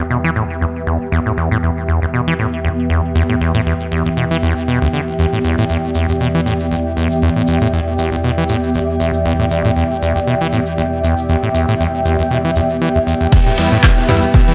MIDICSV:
0, 0, Header, 1, 6, 480
1, 0, Start_track
1, 0, Key_signature, 1, "minor"
1, 0, Tempo, 508475
1, 1059, Time_signature, 4, 2, 24, 8
1, 13730, End_track
2, 0, Start_track
2, 0, Title_t, "Ambient pad"
2, 0, Program_c, 0, 92
2, 0, Note_on_c, 0, 59, 82
2, 0, Note_on_c, 0, 67, 83
2, 0, Note_on_c, 0, 76, 74
2, 0, Note_on_c, 0, 79, 87
2, 13730, Note_off_c, 0, 59, 0
2, 13730, Note_off_c, 0, 67, 0
2, 13730, Note_off_c, 0, 76, 0
2, 13730, Note_off_c, 0, 79, 0
2, 13730, End_track
3, 0, Start_track
3, 0, Title_t, "Analog synth pad"
3, 0, Program_c, 1, 89
3, 0, Note_on_c, 1, 40, 82
3, 0, Note_on_c, 1, 52, 74
3, 0, Note_on_c, 1, 67, 76
3, 0, Note_on_c, 1, 71, 90
3, 4887, Note_off_c, 1, 71, 0
3, 4898, Note_on_c, 1, 74, 92
3, 12541, Note_off_c, 1, 40, 0
3, 12541, Note_off_c, 1, 52, 0
3, 12541, Note_off_c, 1, 67, 0
3, 12567, Note_off_c, 1, 74, 0
3, 12577, Note_on_c, 1, 40, 86
3, 12578, Note_on_c, 1, 67, 80
3, 12578, Note_on_c, 1, 71, 99
3, 12579, Note_on_c, 1, 52, 78
3, 13730, Note_off_c, 1, 40, 0
3, 13730, Note_off_c, 1, 52, 0
3, 13730, Note_off_c, 1, 67, 0
3, 13730, Note_off_c, 1, 71, 0
3, 13730, End_track
4, 0, Start_track
4, 0, Title_t, "Grand piano"
4, 0, Program_c, 2, 0
4, 12819, Note_on_c, 2, 55, 90
4, 12819, Note_on_c, 2, 59, 80
4, 12819, Note_on_c, 2, 64, 93
4, 12910, Note_off_c, 2, 55, 0
4, 12910, Note_off_c, 2, 59, 0
4, 12910, Note_off_c, 2, 64, 0
4, 13299, Note_on_c, 2, 55, 104
4, 13299, Note_on_c, 2, 59, 95
4, 13299, Note_on_c, 2, 64, 113
4, 13390, Note_off_c, 2, 55, 0
4, 13390, Note_off_c, 2, 59, 0
4, 13390, Note_off_c, 2, 64, 0
4, 13730, End_track
5, 0, Start_track
5, 0, Title_t, "Acid bass"
5, 0, Program_c, 3, 38
5, 98, Note_on_c, 3, 47, 78
5, 170, Note_off_c, 3, 47, 0
5, 229, Note_on_c, 3, 52, 97
5, 289, Note_off_c, 3, 52, 0
5, 339, Note_on_c, 3, 45, 76
5, 410, Note_off_c, 3, 45, 0
5, 579, Note_on_c, 3, 40, 81
5, 622, Note_off_c, 3, 40, 0
5, 818, Note_on_c, 3, 40, 76
5, 926, Note_off_c, 3, 40, 0
5, 1058, Note_on_c, 3, 40, 101
5, 1130, Note_off_c, 3, 40, 0
5, 1189, Note_on_c, 3, 45, 78
5, 1249, Note_off_c, 3, 45, 0
5, 1299, Note_on_c, 3, 40, 73
5, 1406, Note_off_c, 3, 40, 0
5, 1429, Note_on_c, 3, 45, 99
5, 1489, Note_off_c, 3, 45, 0
5, 1539, Note_on_c, 3, 40, 77
5, 1611, Note_off_c, 3, 40, 0
5, 1779, Note_on_c, 3, 40, 75
5, 1886, Note_off_c, 3, 40, 0
5, 1908, Note_on_c, 3, 40, 74
5, 1945, Note_off_c, 3, 40, 0
5, 2018, Note_on_c, 3, 47, 81
5, 2090, Note_off_c, 3, 47, 0
5, 2148, Note_on_c, 3, 52, 99
5, 2209, Note_off_c, 3, 52, 0
5, 2257, Note_on_c, 3, 45, 76
5, 2330, Note_off_c, 3, 45, 0
5, 2498, Note_on_c, 3, 40, 80
5, 2541, Note_off_c, 3, 40, 0
5, 2738, Note_on_c, 3, 40, 73
5, 2846, Note_off_c, 3, 40, 0
5, 2977, Note_on_c, 3, 40, 106
5, 3050, Note_off_c, 3, 40, 0
5, 3109, Note_on_c, 3, 45, 76
5, 3169, Note_off_c, 3, 45, 0
5, 3219, Note_on_c, 3, 40, 75
5, 3326, Note_off_c, 3, 40, 0
5, 3348, Note_on_c, 3, 45, 104
5, 3409, Note_off_c, 3, 45, 0
5, 3459, Note_on_c, 3, 40, 78
5, 3531, Note_off_c, 3, 40, 0
5, 3699, Note_on_c, 3, 40, 76
5, 3806, Note_off_c, 3, 40, 0
5, 3829, Note_on_c, 3, 40, 73
5, 3865, Note_off_c, 3, 40, 0
5, 3938, Note_on_c, 3, 47, 77
5, 4010, Note_off_c, 3, 47, 0
5, 4068, Note_on_c, 3, 52, 99
5, 4129, Note_off_c, 3, 52, 0
5, 4177, Note_on_c, 3, 40, 100
5, 4286, Note_off_c, 3, 40, 0
5, 4418, Note_on_c, 3, 47, 76
5, 4526, Note_off_c, 3, 47, 0
5, 4548, Note_on_c, 3, 38, 97
5, 4609, Note_off_c, 3, 38, 0
5, 4658, Note_on_c, 3, 50, 73
5, 4730, Note_off_c, 3, 50, 0
5, 4899, Note_on_c, 3, 40, 102
5, 4970, Note_off_c, 3, 40, 0
5, 5029, Note_on_c, 3, 45, 76
5, 5090, Note_off_c, 3, 45, 0
5, 5140, Note_on_c, 3, 40, 75
5, 5247, Note_off_c, 3, 40, 0
5, 5270, Note_on_c, 3, 45, 101
5, 5330, Note_off_c, 3, 45, 0
5, 5380, Note_on_c, 3, 40, 76
5, 5451, Note_off_c, 3, 40, 0
5, 5619, Note_on_c, 3, 40, 74
5, 5726, Note_off_c, 3, 40, 0
5, 5749, Note_on_c, 3, 40, 73
5, 5785, Note_off_c, 3, 40, 0
5, 5860, Note_on_c, 3, 47, 80
5, 5931, Note_off_c, 3, 47, 0
5, 5990, Note_on_c, 3, 52, 98
5, 6050, Note_off_c, 3, 52, 0
5, 6099, Note_on_c, 3, 45, 74
5, 6171, Note_off_c, 3, 45, 0
5, 6339, Note_on_c, 3, 40, 79
5, 6382, Note_off_c, 3, 40, 0
5, 6578, Note_on_c, 3, 40, 75
5, 6686, Note_off_c, 3, 40, 0
5, 6819, Note_on_c, 3, 40, 99
5, 6891, Note_off_c, 3, 40, 0
5, 6949, Note_on_c, 3, 45, 77
5, 7009, Note_off_c, 3, 45, 0
5, 7058, Note_on_c, 3, 40, 74
5, 7166, Note_off_c, 3, 40, 0
5, 7188, Note_on_c, 3, 45, 100
5, 7249, Note_off_c, 3, 45, 0
5, 7298, Note_on_c, 3, 40, 79
5, 7370, Note_off_c, 3, 40, 0
5, 7538, Note_on_c, 3, 40, 78
5, 7646, Note_off_c, 3, 40, 0
5, 7668, Note_on_c, 3, 40, 75
5, 7705, Note_off_c, 3, 40, 0
5, 7777, Note_on_c, 3, 47, 81
5, 7850, Note_off_c, 3, 47, 0
5, 7909, Note_on_c, 3, 52, 100
5, 7969, Note_off_c, 3, 52, 0
5, 8018, Note_on_c, 3, 45, 75
5, 8090, Note_off_c, 3, 45, 0
5, 8258, Note_on_c, 3, 40, 80
5, 8301, Note_off_c, 3, 40, 0
5, 8497, Note_on_c, 3, 40, 74
5, 8606, Note_off_c, 3, 40, 0
5, 8738, Note_on_c, 3, 40, 102
5, 8810, Note_off_c, 3, 40, 0
5, 8868, Note_on_c, 3, 45, 75
5, 8929, Note_off_c, 3, 45, 0
5, 8977, Note_on_c, 3, 40, 75
5, 9086, Note_off_c, 3, 40, 0
5, 9108, Note_on_c, 3, 45, 97
5, 9169, Note_off_c, 3, 45, 0
5, 9217, Note_on_c, 3, 40, 82
5, 9290, Note_off_c, 3, 40, 0
5, 9458, Note_on_c, 3, 40, 77
5, 9566, Note_off_c, 3, 40, 0
5, 9588, Note_on_c, 3, 40, 74
5, 9625, Note_off_c, 3, 40, 0
5, 9697, Note_on_c, 3, 47, 79
5, 9770, Note_off_c, 3, 47, 0
5, 9827, Note_on_c, 3, 52, 102
5, 9889, Note_off_c, 3, 52, 0
5, 9937, Note_on_c, 3, 45, 78
5, 10010, Note_off_c, 3, 45, 0
5, 10178, Note_on_c, 3, 40, 81
5, 10221, Note_off_c, 3, 40, 0
5, 10418, Note_on_c, 3, 40, 72
5, 10526, Note_off_c, 3, 40, 0
5, 10658, Note_on_c, 3, 40, 103
5, 10730, Note_off_c, 3, 40, 0
5, 10788, Note_on_c, 3, 45, 75
5, 10849, Note_off_c, 3, 45, 0
5, 10898, Note_on_c, 3, 40, 75
5, 11006, Note_off_c, 3, 40, 0
5, 11029, Note_on_c, 3, 45, 98
5, 11089, Note_off_c, 3, 45, 0
5, 11138, Note_on_c, 3, 40, 80
5, 11210, Note_off_c, 3, 40, 0
5, 11378, Note_on_c, 3, 40, 78
5, 11486, Note_off_c, 3, 40, 0
5, 11509, Note_on_c, 3, 40, 73
5, 11545, Note_off_c, 3, 40, 0
5, 11618, Note_on_c, 3, 47, 77
5, 11690, Note_off_c, 3, 47, 0
5, 11749, Note_on_c, 3, 52, 98
5, 11809, Note_off_c, 3, 52, 0
5, 11857, Note_on_c, 3, 40, 99
5, 11901, Note_off_c, 3, 40, 0
5, 12097, Note_on_c, 3, 52, 98
5, 12170, Note_off_c, 3, 52, 0
5, 12227, Note_on_c, 3, 40, 101
5, 12264, Note_off_c, 3, 40, 0
5, 12338, Note_on_c, 3, 40, 75
5, 12410, Note_off_c, 3, 40, 0
5, 12468, Note_on_c, 3, 40, 76
5, 12529, Note_off_c, 3, 40, 0
5, 12578, Note_on_c, 3, 40, 106
5, 12650, Note_off_c, 3, 40, 0
5, 12709, Note_on_c, 3, 45, 80
5, 12769, Note_off_c, 3, 45, 0
5, 12818, Note_on_c, 3, 40, 77
5, 12926, Note_off_c, 3, 40, 0
5, 12949, Note_on_c, 3, 45, 103
5, 13009, Note_off_c, 3, 45, 0
5, 13058, Note_on_c, 3, 40, 81
5, 13130, Note_off_c, 3, 40, 0
5, 13298, Note_on_c, 3, 40, 82
5, 13406, Note_off_c, 3, 40, 0
5, 13428, Note_on_c, 3, 40, 77
5, 13465, Note_off_c, 3, 40, 0
5, 13538, Note_on_c, 3, 47, 81
5, 13610, Note_off_c, 3, 47, 0
5, 13668, Note_on_c, 3, 52, 101
5, 13729, Note_off_c, 3, 52, 0
5, 13730, End_track
6, 0, Start_track
6, 0, Title_t, "Drums"
6, 4899, Note_on_c, 9, 82, 35
6, 4994, Note_off_c, 9, 82, 0
6, 5137, Note_on_c, 9, 82, 78
6, 5232, Note_off_c, 9, 82, 0
6, 5270, Note_on_c, 9, 82, 52
6, 5364, Note_off_c, 9, 82, 0
6, 5374, Note_on_c, 9, 82, 35
6, 5468, Note_off_c, 9, 82, 0
6, 5616, Note_on_c, 9, 82, 90
6, 5710, Note_off_c, 9, 82, 0
6, 5752, Note_on_c, 9, 82, 51
6, 5846, Note_off_c, 9, 82, 0
6, 5857, Note_on_c, 9, 82, 36
6, 5952, Note_off_c, 9, 82, 0
6, 6106, Note_on_c, 9, 82, 82
6, 6200, Note_off_c, 9, 82, 0
6, 6226, Note_on_c, 9, 82, 51
6, 6321, Note_off_c, 9, 82, 0
6, 6340, Note_on_c, 9, 82, 37
6, 6435, Note_off_c, 9, 82, 0
6, 6583, Note_on_c, 9, 82, 91
6, 6678, Note_off_c, 9, 82, 0
6, 6709, Note_on_c, 9, 82, 53
6, 6803, Note_off_c, 9, 82, 0
6, 6815, Note_on_c, 9, 82, 34
6, 6910, Note_off_c, 9, 82, 0
6, 7052, Note_on_c, 9, 82, 83
6, 7146, Note_off_c, 9, 82, 0
6, 7184, Note_on_c, 9, 82, 48
6, 7279, Note_off_c, 9, 82, 0
6, 7299, Note_on_c, 9, 82, 38
6, 7393, Note_off_c, 9, 82, 0
6, 7538, Note_on_c, 9, 82, 77
6, 7633, Note_off_c, 9, 82, 0
6, 7664, Note_on_c, 9, 82, 45
6, 7759, Note_off_c, 9, 82, 0
6, 7778, Note_on_c, 9, 82, 35
6, 7873, Note_off_c, 9, 82, 0
6, 8012, Note_on_c, 9, 82, 89
6, 8107, Note_off_c, 9, 82, 0
6, 8149, Note_on_c, 9, 82, 51
6, 8244, Note_off_c, 9, 82, 0
6, 8255, Note_on_c, 9, 82, 40
6, 8349, Note_off_c, 9, 82, 0
6, 8500, Note_on_c, 9, 82, 78
6, 8594, Note_off_c, 9, 82, 0
6, 8626, Note_on_c, 9, 82, 45
6, 8720, Note_off_c, 9, 82, 0
6, 8735, Note_on_c, 9, 82, 38
6, 8829, Note_off_c, 9, 82, 0
6, 8978, Note_on_c, 9, 82, 74
6, 9072, Note_off_c, 9, 82, 0
6, 9113, Note_on_c, 9, 82, 51
6, 9207, Note_off_c, 9, 82, 0
6, 9218, Note_on_c, 9, 82, 35
6, 9312, Note_off_c, 9, 82, 0
6, 9464, Note_on_c, 9, 82, 76
6, 9558, Note_off_c, 9, 82, 0
6, 9597, Note_on_c, 9, 82, 49
6, 9692, Note_off_c, 9, 82, 0
6, 9694, Note_on_c, 9, 82, 34
6, 9789, Note_off_c, 9, 82, 0
6, 9936, Note_on_c, 9, 82, 78
6, 10031, Note_off_c, 9, 82, 0
6, 10063, Note_on_c, 9, 82, 44
6, 10157, Note_off_c, 9, 82, 0
6, 10178, Note_on_c, 9, 82, 37
6, 10273, Note_off_c, 9, 82, 0
6, 10422, Note_on_c, 9, 82, 85
6, 10517, Note_off_c, 9, 82, 0
6, 10548, Note_on_c, 9, 82, 50
6, 10642, Note_off_c, 9, 82, 0
6, 10656, Note_on_c, 9, 82, 39
6, 10751, Note_off_c, 9, 82, 0
6, 10900, Note_on_c, 9, 82, 79
6, 10994, Note_off_c, 9, 82, 0
6, 11027, Note_on_c, 9, 82, 54
6, 11122, Note_off_c, 9, 82, 0
6, 11145, Note_on_c, 9, 82, 36
6, 11240, Note_off_c, 9, 82, 0
6, 11379, Note_on_c, 9, 82, 81
6, 11474, Note_off_c, 9, 82, 0
6, 11511, Note_on_c, 9, 82, 47
6, 11606, Note_off_c, 9, 82, 0
6, 11621, Note_on_c, 9, 82, 37
6, 11715, Note_off_c, 9, 82, 0
6, 11856, Note_on_c, 9, 82, 81
6, 11951, Note_off_c, 9, 82, 0
6, 11984, Note_on_c, 9, 82, 52
6, 12078, Note_off_c, 9, 82, 0
6, 12098, Note_on_c, 9, 82, 40
6, 12192, Note_off_c, 9, 82, 0
6, 12347, Note_on_c, 9, 82, 85
6, 12441, Note_off_c, 9, 82, 0
6, 12466, Note_on_c, 9, 82, 48
6, 12561, Note_off_c, 9, 82, 0
6, 12575, Note_on_c, 9, 51, 98
6, 12576, Note_on_c, 9, 82, 39
6, 12578, Note_on_c, 9, 42, 85
6, 12578, Note_on_c, 9, 49, 104
6, 12579, Note_on_c, 9, 36, 120
6, 12670, Note_off_c, 9, 51, 0
6, 12670, Note_off_c, 9, 82, 0
6, 12673, Note_off_c, 9, 36, 0
6, 12673, Note_off_c, 9, 42, 0
6, 12673, Note_off_c, 9, 49, 0
6, 12812, Note_on_c, 9, 82, 85
6, 12816, Note_on_c, 9, 51, 75
6, 12818, Note_on_c, 9, 46, 110
6, 12907, Note_off_c, 9, 82, 0
6, 12911, Note_off_c, 9, 51, 0
6, 12913, Note_off_c, 9, 46, 0
6, 12948, Note_on_c, 9, 42, 40
6, 12957, Note_on_c, 9, 82, 54
6, 13043, Note_off_c, 9, 42, 0
6, 13051, Note_off_c, 9, 82, 0
6, 13057, Note_on_c, 9, 82, 39
6, 13058, Note_on_c, 9, 42, 84
6, 13059, Note_on_c, 9, 36, 121
6, 13059, Note_on_c, 9, 39, 123
6, 13060, Note_on_c, 9, 38, 119
6, 13061, Note_on_c, 9, 51, 86
6, 13151, Note_off_c, 9, 82, 0
6, 13152, Note_off_c, 9, 42, 0
6, 13153, Note_off_c, 9, 36, 0
6, 13153, Note_off_c, 9, 39, 0
6, 13154, Note_off_c, 9, 38, 0
6, 13155, Note_off_c, 9, 51, 0
6, 13188, Note_on_c, 9, 42, 38
6, 13192, Note_on_c, 9, 38, 51
6, 13283, Note_off_c, 9, 42, 0
6, 13286, Note_off_c, 9, 38, 0
6, 13297, Note_on_c, 9, 82, 88
6, 13298, Note_on_c, 9, 38, 38
6, 13298, Note_on_c, 9, 45, 84
6, 13298, Note_on_c, 9, 46, 111
6, 13298, Note_on_c, 9, 51, 67
6, 13392, Note_off_c, 9, 38, 0
6, 13392, Note_off_c, 9, 45, 0
6, 13392, Note_off_c, 9, 46, 0
6, 13392, Note_off_c, 9, 82, 0
6, 13393, Note_off_c, 9, 51, 0
6, 13428, Note_on_c, 9, 42, 39
6, 13430, Note_on_c, 9, 82, 55
6, 13523, Note_off_c, 9, 42, 0
6, 13524, Note_off_c, 9, 82, 0
6, 13534, Note_on_c, 9, 82, 44
6, 13537, Note_on_c, 9, 42, 84
6, 13539, Note_on_c, 9, 36, 120
6, 13542, Note_on_c, 9, 51, 98
6, 13628, Note_off_c, 9, 82, 0
6, 13631, Note_off_c, 9, 42, 0
6, 13633, Note_off_c, 9, 36, 0
6, 13636, Note_off_c, 9, 51, 0
6, 13668, Note_on_c, 9, 42, 39
6, 13730, Note_off_c, 9, 42, 0
6, 13730, End_track
0, 0, End_of_file